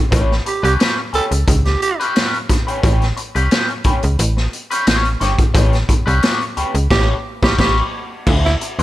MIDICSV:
0, 0, Header, 1, 6, 480
1, 0, Start_track
1, 0, Tempo, 679502
1, 83, Time_signature, 4, 2, 24, 8
1, 6237, End_track
2, 0, Start_track
2, 0, Title_t, "Clean electric guitar"
2, 0, Program_c, 0, 27
2, 78, Note_on_c, 0, 61, 81
2, 86, Note_on_c, 0, 67, 83
2, 91, Note_on_c, 0, 71, 91
2, 227, Note_off_c, 0, 61, 0
2, 231, Note_off_c, 0, 67, 0
2, 234, Note_off_c, 0, 71, 0
2, 445, Note_on_c, 0, 71, 57
2, 454, Note_on_c, 0, 67, 54
2, 456, Note_on_c, 0, 61, 45
2, 549, Note_off_c, 0, 71, 0
2, 551, Note_off_c, 0, 61, 0
2, 554, Note_off_c, 0, 67, 0
2, 559, Note_on_c, 0, 61, 74
2, 566, Note_on_c, 0, 67, 80
2, 573, Note_on_c, 0, 71, 95
2, 678, Note_off_c, 0, 71, 0
2, 689, Note_off_c, 0, 67, 0
2, 705, Note_off_c, 0, 61, 0
2, 797, Note_on_c, 0, 61, 60
2, 807, Note_on_c, 0, 67, 65
2, 812, Note_on_c, 0, 71, 58
2, 914, Note_off_c, 0, 61, 0
2, 918, Note_off_c, 0, 71, 0
2, 920, Note_off_c, 0, 67, 0
2, 1411, Note_on_c, 0, 71, 71
2, 1415, Note_on_c, 0, 67, 63
2, 1424, Note_on_c, 0, 61, 56
2, 1515, Note_off_c, 0, 61, 0
2, 1521, Note_off_c, 0, 67, 0
2, 1523, Note_on_c, 0, 61, 79
2, 1528, Note_off_c, 0, 71, 0
2, 1529, Note_on_c, 0, 67, 79
2, 1536, Note_on_c, 0, 71, 97
2, 1667, Note_off_c, 0, 61, 0
2, 1670, Note_off_c, 0, 67, 0
2, 1673, Note_off_c, 0, 71, 0
2, 1885, Note_on_c, 0, 71, 72
2, 1893, Note_on_c, 0, 67, 69
2, 1901, Note_on_c, 0, 61, 55
2, 1987, Note_off_c, 0, 61, 0
2, 1989, Note_off_c, 0, 71, 0
2, 1992, Note_off_c, 0, 67, 0
2, 1995, Note_on_c, 0, 61, 86
2, 2005, Note_on_c, 0, 67, 72
2, 2011, Note_on_c, 0, 71, 84
2, 2143, Note_off_c, 0, 61, 0
2, 2147, Note_off_c, 0, 67, 0
2, 2150, Note_off_c, 0, 71, 0
2, 2366, Note_on_c, 0, 71, 67
2, 2374, Note_on_c, 0, 67, 56
2, 2381, Note_on_c, 0, 61, 52
2, 2469, Note_off_c, 0, 71, 0
2, 2473, Note_off_c, 0, 67, 0
2, 2474, Note_off_c, 0, 61, 0
2, 2482, Note_on_c, 0, 61, 80
2, 2487, Note_on_c, 0, 67, 82
2, 2493, Note_on_c, 0, 71, 86
2, 2599, Note_off_c, 0, 71, 0
2, 2609, Note_off_c, 0, 67, 0
2, 2626, Note_off_c, 0, 61, 0
2, 2717, Note_on_c, 0, 61, 57
2, 2724, Note_on_c, 0, 67, 65
2, 2728, Note_on_c, 0, 71, 71
2, 2834, Note_off_c, 0, 61, 0
2, 2837, Note_off_c, 0, 67, 0
2, 2839, Note_off_c, 0, 71, 0
2, 3324, Note_on_c, 0, 71, 78
2, 3333, Note_on_c, 0, 67, 65
2, 3337, Note_on_c, 0, 61, 67
2, 3429, Note_off_c, 0, 61, 0
2, 3434, Note_off_c, 0, 67, 0
2, 3437, Note_on_c, 0, 61, 86
2, 3442, Note_on_c, 0, 67, 79
2, 3447, Note_off_c, 0, 71, 0
2, 3450, Note_on_c, 0, 73, 94
2, 3563, Note_off_c, 0, 73, 0
2, 3568, Note_off_c, 0, 67, 0
2, 3585, Note_off_c, 0, 61, 0
2, 3677, Note_on_c, 0, 61, 61
2, 3685, Note_on_c, 0, 67, 65
2, 3689, Note_on_c, 0, 73, 66
2, 3793, Note_off_c, 0, 61, 0
2, 3797, Note_off_c, 0, 67, 0
2, 3799, Note_off_c, 0, 73, 0
2, 3912, Note_on_c, 0, 61, 84
2, 3920, Note_on_c, 0, 67, 90
2, 3924, Note_on_c, 0, 71, 109
2, 4061, Note_off_c, 0, 61, 0
2, 4065, Note_off_c, 0, 67, 0
2, 4067, Note_off_c, 0, 71, 0
2, 4279, Note_on_c, 0, 71, 60
2, 4286, Note_on_c, 0, 67, 56
2, 4291, Note_on_c, 0, 61, 52
2, 4385, Note_off_c, 0, 71, 0
2, 4388, Note_off_c, 0, 61, 0
2, 4389, Note_off_c, 0, 67, 0
2, 4397, Note_on_c, 0, 61, 76
2, 4403, Note_on_c, 0, 67, 82
2, 4410, Note_on_c, 0, 71, 87
2, 4517, Note_off_c, 0, 71, 0
2, 4525, Note_off_c, 0, 67, 0
2, 4543, Note_off_c, 0, 61, 0
2, 4640, Note_on_c, 0, 61, 65
2, 4645, Note_on_c, 0, 67, 63
2, 4650, Note_on_c, 0, 71, 72
2, 4755, Note_off_c, 0, 61, 0
2, 4758, Note_off_c, 0, 67, 0
2, 4760, Note_off_c, 0, 71, 0
2, 4877, Note_on_c, 0, 61, 96
2, 4885, Note_on_c, 0, 67, 98
2, 4889, Note_on_c, 0, 71, 98
2, 5045, Note_off_c, 0, 61, 0
2, 5049, Note_off_c, 0, 67, 0
2, 5051, Note_off_c, 0, 71, 0
2, 5252, Note_on_c, 0, 71, 88
2, 5258, Note_on_c, 0, 67, 85
2, 5266, Note_on_c, 0, 61, 91
2, 5347, Note_off_c, 0, 71, 0
2, 5349, Note_off_c, 0, 61, 0
2, 5350, Note_off_c, 0, 67, 0
2, 5358, Note_on_c, 0, 61, 89
2, 5363, Note_on_c, 0, 67, 88
2, 5367, Note_on_c, 0, 71, 90
2, 5525, Note_off_c, 0, 61, 0
2, 5528, Note_off_c, 0, 67, 0
2, 5531, Note_off_c, 0, 71, 0
2, 5839, Note_on_c, 0, 64, 68
2, 5848, Note_on_c, 0, 66, 90
2, 5854, Note_on_c, 0, 72, 79
2, 5988, Note_off_c, 0, 64, 0
2, 5992, Note_off_c, 0, 66, 0
2, 5995, Note_off_c, 0, 72, 0
2, 6210, Note_on_c, 0, 72, 61
2, 6214, Note_on_c, 0, 66, 57
2, 6237, Note_off_c, 0, 66, 0
2, 6237, Note_off_c, 0, 72, 0
2, 6237, End_track
3, 0, Start_track
3, 0, Title_t, "Tenor saxophone"
3, 0, Program_c, 1, 66
3, 333, Note_on_c, 1, 67, 84
3, 430, Note_off_c, 1, 67, 0
3, 454, Note_on_c, 1, 67, 82
3, 521, Note_off_c, 1, 67, 0
3, 809, Note_on_c, 1, 69, 92
3, 883, Note_off_c, 1, 69, 0
3, 1167, Note_on_c, 1, 67, 84
3, 1258, Note_off_c, 1, 67, 0
3, 1286, Note_on_c, 1, 67, 94
3, 1386, Note_off_c, 1, 67, 0
3, 4877, Note_on_c, 1, 67, 103
3, 5003, Note_off_c, 1, 67, 0
3, 5249, Note_on_c, 1, 67, 87
3, 5321, Note_off_c, 1, 67, 0
3, 5365, Note_on_c, 1, 67, 98
3, 5488, Note_off_c, 1, 67, 0
3, 5970, Note_on_c, 1, 64, 85
3, 6038, Note_off_c, 1, 64, 0
3, 6213, Note_on_c, 1, 62, 76
3, 6237, Note_off_c, 1, 62, 0
3, 6237, End_track
4, 0, Start_track
4, 0, Title_t, "FM bass"
4, 0, Program_c, 2, 39
4, 84, Note_on_c, 2, 33, 113
4, 287, Note_off_c, 2, 33, 0
4, 447, Note_on_c, 2, 36, 99
4, 544, Note_off_c, 2, 36, 0
4, 802, Note_on_c, 2, 37, 53
4, 853, Note_off_c, 2, 37, 0
4, 928, Note_on_c, 2, 37, 77
4, 1024, Note_off_c, 2, 37, 0
4, 1043, Note_on_c, 2, 37, 99
4, 1246, Note_off_c, 2, 37, 0
4, 2003, Note_on_c, 2, 33, 121
4, 2206, Note_off_c, 2, 33, 0
4, 2370, Note_on_c, 2, 36, 84
4, 2465, Note_off_c, 2, 36, 0
4, 2719, Note_on_c, 2, 37, 53
4, 2770, Note_off_c, 2, 37, 0
4, 2852, Note_on_c, 2, 37, 85
4, 2946, Note_off_c, 2, 37, 0
4, 2961, Note_on_c, 2, 33, 102
4, 3164, Note_off_c, 2, 33, 0
4, 3444, Note_on_c, 2, 33, 86
4, 3646, Note_off_c, 2, 33, 0
4, 3681, Note_on_c, 2, 31, 76
4, 3789, Note_off_c, 2, 31, 0
4, 3919, Note_on_c, 2, 33, 111
4, 4124, Note_off_c, 2, 33, 0
4, 4287, Note_on_c, 2, 36, 94
4, 4383, Note_off_c, 2, 36, 0
4, 4643, Note_on_c, 2, 37, 49
4, 4694, Note_off_c, 2, 37, 0
4, 4765, Note_on_c, 2, 37, 90
4, 4862, Note_off_c, 2, 37, 0
4, 4879, Note_on_c, 2, 33, 100
4, 5046, Note_off_c, 2, 33, 0
4, 5245, Note_on_c, 2, 33, 104
4, 5343, Note_off_c, 2, 33, 0
4, 5359, Note_on_c, 2, 33, 92
4, 5526, Note_off_c, 2, 33, 0
4, 5841, Note_on_c, 2, 38, 113
4, 6046, Note_off_c, 2, 38, 0
4, 6207, Note_on_c, 2, 40, 90
4, 6237, Note_off_c, 2, 40, 0
4, 6237, End_track
5, 0, Start_track
5, 0, Title_t, "Muted clean electric guitar strokes"
5, 322, Note_on_c, 9, 29, 36
5, 393, Note_off_c, 9, 29, 0
5, 687, Note_on_c, 9, 29, 46
5, 758, Note_off_c, 9, 29, 0
5, 927, Note_on_c, 9, 29, 43
5, 998, Note_off_c, 9, 29, 0
5, 1045, Note_on_c, 9, 29, 42
5, 1116, Note_off_c, 9, 29, 0
5, 1171, Note_on_c, 9, 29, 45
5, 1242, Note_off_c, 9, 29, 0
5, 1763, Note_on_c, 9, 29, 46
5, 1834, Note_off_c, 9, 29, 0
5, 2236, Note_on_c, 9, 29, 42
5, 2307, Note_off_c, 9, 29, 0
5, 2607, Note_on_c, 9, 29, 46
5, 2678, Note_off_c, 9, 29, 0
5, 2847, Note_on_c, 9, 29, 44
5, 2917, Note_off_c, 9, 29, 0
5, 2959, Note_on_c, 9, 29, 41
5, 3030, Note_off_c, 9, 29, 0
5, 3086, Note_on_c, 9, 29, 45
5, 3157, Note_off_c, 9, 29, 0
5, 3566, Note_on_c, 9, 29, 44
5, 3637, Note_off_c, 9, 29, 0
5, 3806, Note_on_c, 9, 29, 43
5, 3876, Note_off_c, 9, 29, 0
5, 4160, Note_on_c, 9, 29, 43
5, 4231, Note_off_c, 9, 29, 0
5, 4526, Note_on_c, 9, 29, 51
5, 4596, Note_off_c, 9, 29, 0
5, 4771, Note_on_c, 9, 29, 40
5, 4842, Note_off_c, 9, 29, 0
5, 6085, Note_on_c, 9, 29, 33
5, 6155, Note_off_c, 9, 29, 0
5, 6237, End_track
6, 0, Start_track
6, 0, Title_t, "Drums"
6, 86, Note_on_c, 9, 36, 123
6, 88, Note_on_c, 9, 42, 100
6, 156, Note_off_c, 9, 36, 0
6, 158, Note_off_c, 9, 42, 0
6, 224, Note_on_c, 9, 38, 34
6, 294, Note_off_c, 9, 38, 0
6, 326, Note_on_c, 9, 42, 68
6, 396, Note_off_c, 9, 42, 0
6, 455, Note_on_c, 9, 42, 53
6, 526, Note_off_c, 9, 42, 0
6, 565, Note_on_c, 9, 42, 86
6, 573, Note_on_c, 9, 38, 105
6, 636, Note_off_c, 9, 42, 0
6, 644, Note_off_c, 9, 38, 0
6, 802, Note_on_c, 9, 42, 63
6, 872, Note_off_c, 9, 42, 0
6, 928, Note_on_c, 9, 42, 65
6, 999, Note_off_c, 9, 42, 0
6, 1043, Note_on_c, 9, 36, 97
6, 1043, Note_on_c, 9, 42, 105
6, 1113, Note_off_c, 9, 36, 0
6, 1114, Note_off_c, 9, 42, 0
6, 1168, Note_on_c, 9, 42, 32
6, 1171, Note_on_c, 9, 38, 34
6, 1239, Note_off_c, 9, 42, 0
6, 1242, Note_off_c, 9, 38, 0
6, 1286, Note_on_c, 9, 42, 66
6, 1356, Note_off_c, 9, 42, 0
6, 1416, Note_on_c, 9, 42, 59
6, 1487, Note_off_c, 9, 42, 0
6, 1524, Note_on_c, 9, 42, 94
6, 1531, Note_on_c, 9, 38, 101
6, 1595, Note_off_c, 9, 42, 0
6, 1602, Note_off_c, 9, 38, 0
6, 1653, Note_on_c, 9, 42, 37
6, 1724, Note_off_c, 9, 42, 0
6, 1762, Note_on_c, 9, 36, 90
6, 1762, Note_on_c, 9, 42, 69
6, 1772, Note_on_c, 9, 38, 37
6, 1833, Note_off_c, 9, 36, 0
6, 1833, Note_off_c, 9, 42, 0
6, 1843, Note_off_c, 9, 38, 0
6, 1894, Note_on_c, 9, 42, 55
6, 1964, Note_off_c, 9, 42, 0
6, 2002, Note_on_c, 9, 36, 123
6, 2002, Note_on_c, 9, 42, 89
6, 2073, Note_off_c, 9, 36, 0
6, 2073, Note_off_c, 9, 42, 0
6, 2129, Note_on_c, 9, 42, 35
6, 2137, Note_on_c, 9, 38, 33
6, 2200, Note_off_c, 9, 42, 0
6, 2208, Note_off_c, 9, 38, 0
6, 2240, Note_on_c, 9, 42, 74
6, 2311, Note_off_c, 9, 42, 0
6, 2370, Note_on_c, 9, 42, 55
6, 2441, Note_off_c, 9, 42, 0
6, 2480, Note_on_c, 9, 42, 82
6, 2488, Note_on_c, 9, 38, 108
6, 2551, Note_off_c, 9, 42, 0
6, 2558, Note_off_c, 9, 38, 0
6, 2605, Note_on_c, 9, 42, 34
6, 2675, Note_off_c, 9, 42, 0
6, 2713, Note_on_c, 9, 42, 63
6, 2718, Note_on_c, 9, 36, 93
6, 2784, Note_off_c, 9, 42, 0
6, 2789, Note_off_c, 9, 36, 0
6, 2844, Note_on_c, 9, 42, 60
6, 2915, Note_off_c, 9, 42, 0
6, 2959, Note_on_c, 9, 42, 106
6, 3030, Note_off_c, 9, 42, 0
6, 3087, Note_on_c, 9, 38, 32
6, 3158, Note_off_c, 9, 38, 0
6, 3200, Note_on_c, 9, 42, 64
6, 3271, Note_off_c, 9, 42, 0
6, 3329, Note_on_c, 9, 42, 54
6, 3399, Note_off_c, 9, 42, 0
6, 3438, Note_on_c, 9, 42, 95
6, 3446, Note_on_c, 9, 38, 112
6, 3509, Note_off_c, 9, 42, 0
6, 3516, Note_off_c, 9, 38, 0
6, 3566, Note_on_c, 9, 42, 34
6, 3637, Note_off_c, 9, 42, 0
6, 3679, Note_on_c, 9, 42, 64
6, 3689, Note_on_c, 9, 38, 36
6, 3749, Note_off_c, 9, 42, 0
6, 3759, Note_off_c, 9, 38, 0
6, 3804, Note_on_c, 9, 36, 99
6, 3805, Note_on_c, 9, 42, 53
6, 3875, Note_off_c, 9, 36, 0
6, 3876, Note_off_c, 9, 42, 0
6, 3917, Note_on_c, 9, 36, 112
6, 3917, Note_on_c, 9, 42, 101
6, 3987, Note_off_c, 9, 42, 0
6, 3988, Note_off_c, 9, 36, 0
6, 4045, Note_on_c, 9, 42, 34
6, 4053, Note_on_c, 9, 38, 33
6, 4116, Note_off_c, 9, 42, 0
6, 4124, Note_off_c, 9, 38, 0
6, 4160, Note_on_c, 9, 36, 88
6, 4160, Note_on_c, 9, 42, 76
6, 4230, Note_off_c, 9, 36, 0
6, 4231, Note_off_c, 9, 42, 0
6, 4290, Note_on_c, 9, 42, 52
6, 4361, Note_off_c, 9, 42, 0
6, 4398, Note_on_c, 9, 42, 86
6, 4406, Note_on_c, 9, 38, 105
6, 4468, Note_off_c, 9, 42, 0
6, 4476, Note_off_c, 9, 38, 0
6, 4528, Note_on_c, 9, 42, 34
6, 4599, Note_off_c, 9, 42, 0
6, 4640, Note_on_c, 9, 42, 60
6, 4711, Note_off_c, 9, 42, 0
6, 4764, Note_on_c, 9, 42, 66
6, 4835, Note_off_c, 9, 42, 0
6, 4878, Note_on_c, 9, 36, 121
6, 4878, Note_on_c, 9, 49, 88
6, 4884, Note_on_c, 9, 38, 107
6, 4948, Note_off_c, 9, 36, 0
6, 4949, Note_off_c, 9, 49, 0
6, 4955, Note_off_c, 9, 38, 0
6, 5246, Note_on_c, 9, 36, 104
6, 5253, Note_on_c, 9, 38, 110
6, 5316, Note_off_c, 9, 36, 0
6, 5324, Note_off_c, 9, 38, 0
6, 5359, Note_on_c, 9, 36, 99
6, 5360, Note_on_c, 9, 49, 86
6, 5366, Note_on_c, 9, 38, 106
6, 5429, Note_off_c, 9, 36, 0
6, 5431, Note_off_c, 9, 49, 0
6, 5436, Note_off_c, 9, 38, 0
6, 5839, Note_on_c, 9, 49, 98
6, 5840, Note_on_c, 9, 36, 100
6, 5909, Note_off_c, 9, 49, 0
6, 5911, Note_off_c, 9, 36, 0
6, 5975, Note_on_c, 9, 38, 32
6, 6046, Note_off_c, 9, 38, 0
6, 6083, Note_on_c, 9, 42, 70
6, 6153, Note_off_c, 9, 42, 0
6, 6210, Note_on_c, 9, 42, 50
6, 6237, Note_off_c, 9, 42, 0
6, 6237, End_track
0, 0, End_of_file